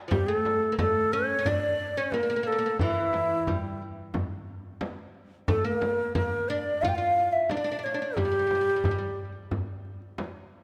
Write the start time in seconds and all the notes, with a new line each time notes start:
0.08 F3 G3 G4, frame drum
0.12 darbuka dum
0.26 A3 A4
0.45 darbuka tek, frame drum
0.63 darbuka ka
0.72 A#3
0.78 A3 A4, frame drum, darbuka dum
0.96 darbuka ka
1.13 C#4 C#5, darbuka ka
1.39 C#4
1.45 D4 D5, frame drum, darbuka dum
1.81 darbuka ka
1.97 C#4 C#5
2.12 A#3 A#4, darbuka tek, frame drum
2.23 A#3
2.30 A#3, darbuka ka
2.36 A#3
2.43 A#3 A4
2.52 A#3
2.59 A#3
2.66 A#3
2.79 E3 E4, frame drum, darbuka dum
3.13 darbuka tek, frame drum
3.31 darbuka ka
3.47 G3, frame drum, darbuka dum
3.64 darbuka ka
3.81 darbuka ka
4.14 darbuka dum, frame drum
4.47 darbuka ka
4.81 darbuka tek, frame drum
4.99 darbuka ka
5.48 A3 A4, frame drum, darbuka dum
5.65 A#3 A#4
5.81 darbuka tek, frame drum
5.99 darbuka ka
6.15 A#3 A#4, frame drum, darbuka dum
6.32 darbuka ka
6.48 D4 D5, darbuka ka
6.82 F4 F5, darbuka dum, frame drum
6.88 G5
6.95 F4 F5
7.16 darbuka ka
7.32 E5
7.49 D4 D5, darbuka tek, frame drum
7.57 D4
7.64 D4, darbuka ka
7.72 D4
7.79 D4
7.83 D4 C#5
7.94 D4
8.02 D4
8.17 G3 G4, darbuka dum, frame drum
8.25 G3
8.32 G3
8.39 G3
8.47 G3, darbuka tek
8.51 G3, frame drum
8.61 G3
8.68 G3, darbuka ka
8.76 G3
8.84 G3, frame drum, darbuka dum
8.91 G3
8.98 G3
9.18 darbuka ka
9.36 darbuka ka
9.51 darbuka dum, frame drum
9.85 darbuka ka
10.02 darbuka ka
10.18 darbuka tek, frame drum
10.36 darbuka ka